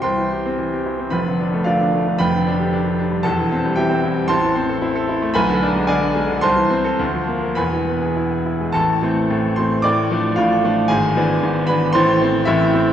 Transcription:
<<
  \new Staff \with { instrumentName = "Grand piano" } { \time 2/4 \key c \major \tempo 4 = 112 <c'' g'' c'''>2 | <b' b''>4 <f' d'' f''>4 | <b' g'' b''>2 | <a' a''>4 <g' e'' g''>8 r8 |
\key a \minor <c'' a'' c'''>2 | <b' gis'' b''>4 <gis' d'' gis''>4 | <c'' a'' c'''>2 | <b' gis'' b''>4 r4 |
<a' a''>4. <c'' c'''>8 | <d'' d'''>4 <f' f''>4 | <gis' gis''>4. <b' b''>8 | <c'' c'''>4 <e' e''>4 | }
  \new Staff \with { instrumentName = "Grand piano" } { \clef bass \time 2/4 \key c \major c,16 e16 g'16 c'16 e16 g'16 e'16 c'16 | <f,, f,>16 d16 d'16 a16 d16 d'16 a16 d16 | <f,, f,>16 d16 d'16 g'16 d'16 g'16 d'16 g16 | <e,, e,>16 e16 c'16 g16 e16 c'16 e'16 g16 |
\key a \minor a,,16 e16 c'16 a'16 e'16 a'16 e'16 a16 | b,,16 d16 d'16 gis16 d16 d'16 gis16 d16 | c,16 e16 c'16 a'16 d,16 f16 bes16 bes'16 | <e,, e,>16 e16 b16 gis'16 e'16 gis'16 e'16 gis16 |
<a,, a,>8 <e a c'>8 <a,, a,>8 <e a c'>8 | <a,, a,>8 <f a d'>8 <a,, a,>8 <f a d'>8 | <gis,, gis,>8 <e b d'>8 <gis,, gis,>8 <e b d'>8 | <a,, a,>8 <e c'>8 <a,, a,>8 <e c'>8 | }
>>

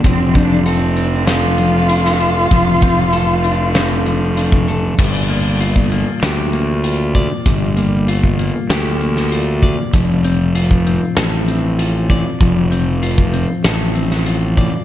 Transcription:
<<
  \new Staff \with { instrumentName = "Cello" } { \time 4/4 \key g \minor \tempo 4 = 97 c'8 d'8 c'4 f'2~ | f'2. r4 | r1 | r1 |
r1 | r1 | }
  \new Staff \with { instrumentName = "Clean electric guitar" } { \time 4/4 \key g \minor f8 c'8 a'8 d'8 c'8 f8 d'8 a'8 | f8 c'8 a'8 d'8 c'8 f8 d'8 a'8 | g8 bes8 f'8 bes8 g'8 bes8 f'8 d''8 | g8 bes8 f'8 bes8 g'8 bes8 f'8 d''8 |
f8 c'8 f'8 c'8 a'8 c'8 f'8 d''8 | f8 c'8 f'8 c'8 a'8 c'8 f'8 d''8 | }
  \new Staff \with { instrumentName = "Fingered electric bass" } { \clef bass \time 4/4 \key g \minor f,,1 | f,,1 | g,,2 d,2 | g,,2 d,2 |
f,,2 a,,2 | f,,2 a,,2 | }
  \new DrumStaff \with { instrumentName = "Drums" } \drummode { \time 4/4 <hh bd>8 <hh bd>8 hh8 hh8 <hh sn>8 hh8 hh16 sn16 hh8 | <hh bd>8 <hh bd>8 hh8 hh8 <hh sn>8 hh8 hh16 bd16 hh8 | <cymc bd>8 hh8 hh16 bd16 hh8 <hh sn>8 hh8 hh8 <hh bd>8 | <hh bd>8 hh8 hh16 bd16 hh8 <hh sn>8 hh16 sn16 hh8 <hh bd>8 |
<hh bd>8 hh8 hh16 bd16 hh8 <hh sn>8 hh8 hh8 <hh bd>8 | <hh bd>8 hh8 hh16 bd16 hh8 <hh sn>8 hh16 sn16 hh8 <hh bd>8 | }
>>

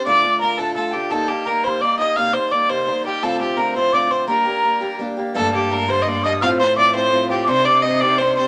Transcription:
<<
  \new Staff \with { instrumentName = "Tin whistle" } { \time 6/8 \key g \minor \tempo 4. = 113 d'''4 bes''8 a''8 a''16. a''32 g''8 | a''4 bes''8 c'''8 d'''8 ees'''8 | f'''8 c'''8 d'''8 c'''4 g''8 | a''8 r8 bes''8 c'''8 d'''8 c'''8 |
bes''2 r4 | a''4. c'''4 ees'''8 | f'''8 c'''8 d'''8 c'''4 g''16. d'''32 | c'''8 d'''8 ees'''8 d'''8 c'''8 c'''8 | }
  \new Staff \with { instrumentName = "Fiddle" } { \time 6/8 \key g \minor d''4 bes'8 a'8 a'8 g'8 | a'8 g'8 bes'8 c''8 d''8 ees''8 | f''8 c''8 d''8 c''4 g'8 | a'8 g'8 bes'8 c''8 d''8 c''8 |
bes'2 r4 | a'8 g'8 bes'8 c''16. ees''32 d''8 ees''8 | f''8 c''8 d''8 c''4 g'8 | c''8 d''8 ees''8 d''8 c''8 c''8 | }
  \new Staff \with { instrumentName = "Steel-string acoustic guitar" } { \time 6/8 \key g \minor <d, a, d a d' f'>8 <d a d' f'>8 <d a d' f'>8 <d, a, d a d' f'>8 <d a d' f'>8 <d a d' f'>8 | <ees g bes ees'>8 <g bes ees'>8 <ees g bes ees'>8 <ees g bes ees'>8 <ees g bes ees'>8 <g bes ees'>8 | <c ees g bes ees'>8 <g bes ees'>8 <ees g bes ees'>8 <c ees g bes ees'>8 <ees g bes ees'>8 <g bes ees'>8 | <d, a, d a c' f'>8 <d a c' f'>8 <d a c' f'>8 <d, a, d a c' f'>8 <d a c' f'>8 <d a c' f'>8 |
<g bes d' g'>8 <bes d' g'>8 <g bes d' g'>8 <g bes d' g'>8 <g bes d' g'>8 <bes d' g'>8 | <g, d g a bes d'>8 <g a bes d'>8 <g a bes d'>8 <g, d g a bes d'>8 <g a bes d'>8 <g a bes d'>8 | <a, f a c' f'>8 <a c' f'>8 <f a c' f'>8 <a, f a c' f'>8 <f a c' f'>8 <a c' f'>8 | <c ees g c' d'>8 <g c' d'>8 <ees g c' d'>8 <c ees g c' d'>8 <ees g c' d'>8 <g c' d'>8 | }
  \new Staff \with { instrumentName = "Cello" } { \clef bass \time 6/8 \key g \minor r2. | r2. | r2. | r2. |
r2. | g,2. | a,2. | c2. | }
>>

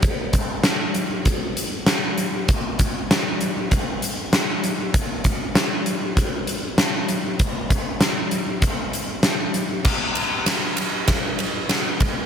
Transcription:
\new DrumStaff \with { instrumentName = "Drums" } \drummode { \time 4/4 \tempo 4 = 98 <hh bd>8 <hh bd>8 <hh sn>8 hh8 <hh bd>8 hh8 <hh sn>8 hh8 | <hh bd>8 <hh bd>8 <hh sn>8 hh8 <hh bd>8 hh8 <hh sn>8 hh8 | <hh bd>8 <hh bd>8 <hh sn>8 hh8 <hh bd>8 hh8 <hh sn>8 hh8 | <hh bd>8 <hh bd>8 <hh sn>8 hh8 <hh bd>8 hh8 <hh sn>8 hh8 |
<cymc bd sn>8 cymr8 <cymr sn>8 cymr8 <bd cymr sn>8 cymr8 <cymr sn>8 <bd cymr>8 | }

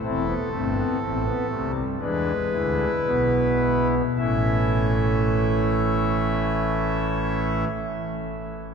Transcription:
<<
  \new Staff \with { instrumentName = "Pipe organ" } { \time 4/4 \key e \phrygian \tempo 4 = 52 << { a'2 b'2 | <e a e''>1 | } \\ { e'8 c'4. d'8 e'4. | e'1 | } >> }
  \new Staff \with { instrumentName = "Pipe organ" } { \clef bass \time 4/4 \key e \phrygian << { c'16 b16 a16 b16 c'16 b16 a16 g16 gis4 b4 | cis'1 | } \\ { <e,, e,>8 <g,, g,>8 <a,, a,>8 <c, c>8 <e, e>8 <d, d>8 <b,, b,>4 | <a,, a,>1 | } >> }
>>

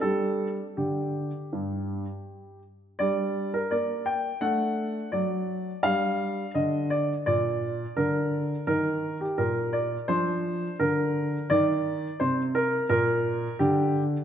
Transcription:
<<
  \new Staff \with { instrumentName = "Grand piano" } { \time 4/4 \key c \lydian \tempo 4 = 85 << { a'4 g'2~ g'8 r8 | \key g \minor d''8. bes'16 d''8 g''8 fis''4 d''4 | f''4 ees''8 d''8 d''4 bes'4 | bes'8. g'16 bes'8 d''8 c''4 bes'4 |
d''4 c''8 bes'8 bes'4 g'4 | } \\ { r1 | d'2 d'2 | d'1 | ees'2 d'2 |
ees'1 | } >> }
  \new Staff \with { instrumentName = "Grand piano" } { \clef bass \time 4/4 \key c \lydian <g d' g'>4 d4 g,4 r4 | \key g \minor g4 bes4 a4 fis4 | g4 d4 bes,4 d4 | ees4 bes,4 f4 d4 |
ees4 c4 bes,4 d4 | }
>>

